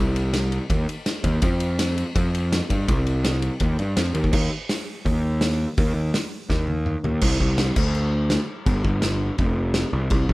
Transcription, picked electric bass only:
0, 0, Header, 1, 2, 480
1, 0, Start_track
1, 0, Tempo, 362100
1, 1893, Time_signature, 4, 2, 24, 8
1, 13693, End_track
2, 0, Start_track
2, 0, Title_t, "Picked electric bass"
2, 0, Program_c, 0, 34
2, 0, Note_on_c, 0, 36, 115
2, 768, Note_off_c, 0, 36, 0
2, 929, Note_on_c, 0, 39, 83
2, 1129, Note_off_c, 0, 39, 0
2, 1643, Note_on_c, 0, 39, 103
2, 1846, Note_off_c, 0, 39, 0
2, 1887, Note_on_c, 0, 41, 101
2, 2685, Note_off_c, 0, 41, 0
2, 2857, Note_on_c, 0, 41, 98
2, 3452, Note_off_c, 0, 41, 0
2, 3584, Note_on_c, 0, 43, 88
2, 3779, Note_off_c, 0, 43, 0
2, 3828, Note_on_c, 0, 36, 118
2, 4617, Note_off_c, 0, 36, 0
2, 4786, Note_on_c, 0, 39, 94
2, 4980, Note_off_c, 0, 39, 0
2, 5025, Note_on_c, 0, 43, 97
2, 5237, Note_off_c, 0, 43, 0
2, 5263, Note_on_c, 0, 41, 85
2, 5475, Note_off_c, 0, 41, 0
2, 5495, Note_on_c, 0, 39, 95
2, 5711, Note_off_c, 0, 39, 0
2, 5739, Note_on_c, 0, 39, 89
2, 5936, Note_off_c, 0, 39, 0
2, 6700, Note_on_c, 0, 39, 90
2, 7491, Note_off_c, 0, 39, 0
2, 7660, Note_on_c, 0, 39, 109
2, 7856, Note_off_c, 0, 39, 0
2, 7883, Note_on_c, 0, 39, 86
2, 8086, Note_off_c, 0, 39, 0
2, 8610, Note_on_c, 0, 39, 91
2, 9205, Note_off_c, 0, 39, 0
2, 9337, Note_on_c, 0, 39, 92
2, 9533, Note_off_c, 0, 39, 0
2, 9577, Note_on_c, 0, 36, 102
2, 9772, Note_off_c, 0, 36, 0
2, 9811, Note_on_c, 0, 36, 97
2, 10207, Note_off_c, 0, 36, 0
2, 10294, Note_on_c, 0, 38, 92
2, 11084, Note_off_c, 0, 38, 0
2, 11482, Note_on_c, 0, 31, 105
2, 11682, Note_off_c, 0, 31, 0
2, 11726, Note_on_c, 0, 31, 90
2, 12320, Note_off_c, 0, 31, 0
2, 12443, Note_on_c, 0, 29, 89
2, 13038, Note_off_c, 0, 29, 0
2, 13163, Note_on_c, 0, 36, 104
2, 13362, Note_off_c, 0, 36, 0
2, 13403, Note_on_c, 0, 36, 108
2, 13601, Note_off_c, 0, 36, 0
2, 13641, Note_on_c, 0, 33, 90
2, 13693, Note_off_c, 0, 33, 0
2, 13693, End_track
0, 0, End_of_file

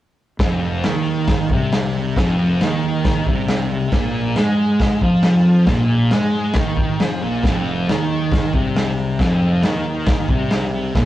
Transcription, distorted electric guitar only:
0, 0, Header, 1, 2, 480
1, 0, Start_track
1, 0, Tempo, 439560
1, 455, Time_signature, 4, 2, 24, 8
1, 12068, End_track
2, 0, Start_track
2, 0, Title_t, "Distorted electric guitar"
2, 0, Program_c, 0, 30
2, 461, Note_on_c, 0, 41, 109
2, 924, Note_on_c, 0, 51, 107
2, 931, Note_off_c, 0, 41, 0
2, 1642, Note_off_c, 0, 51, 0
2, 1669, Note_on_c, 0, 48, 91
2, 2374, Note_off_c, 0, 48, 0
2, 2382, Note_on_c, 0, 41, 106
2, 2851, Note_off_c, 0, 41, 0
2, 2852, Note_on_c, 0, 51, 100
2, 3565, Note_off_c, 0, 51, 0
2, 3580, Note_on_c, 0, 48, 94
2, 4286, Note_off_c, 0, 48, 0
2, 4290, Note_on_c, 0, 46, 112
2, 4764, Note_off_c, 0, 46, 0
2, 4765, Note_on_c, 0, 56, 102
2, 5481, Note_off_c, 0, 56, 0
2, 5489, Note_on_c, 0, 53, 95
2, 6184, Note_off_c, 0, 53, 0
2, 6189, Note_on_c, 0, 46, 110
2, 6673, Note_off_c, 0, 46, 0
2, 6682, Note_on_c, 0, 56, 100
2, 7160, Note_off_c, 0, 56, 0
2, 7164, Note_on_c, 0, 51, 107
2, 7641, Note_off_c, 0, 51, 0
2, 7660, Note_on_c, 0, 53, 101
2, 7886, Note_off_c, 0, 53, 0
2, 7890, Note_on_c, 0, 46, 105
2, 8124, Note_off_c, 0, 46, 0
2, 8132, Note_on_c, 0, 41, 97
2, 8605, Note_off_c, 0, 41, 0
2, 8625, Note_on_c, 0, 51, 103
2, 9326, Note_off_c, 0, 51, 0
2, 9331, Note_on_c, 0, 48, 92
2, 10045, Note_off_c, 0, 48, 0
2, 10045, Note_on_c, 0, 41, 108
2, 10518, Note_on_c, 0, 51, 103
2, 10523, Note_off_c, 0, 41, 0
2, 11240, Note_off_c, 0, 51, 0
2, 11248, Note_on_c, 0, 48, 94
2, 11965, Note_off_c, 0, 48, 0
2, 11989, Note_on_c, 0, 46, 111
2, 12068, Note_off_c, 0, 46, 0
2, 12068, End_track
0, 0, End_of_file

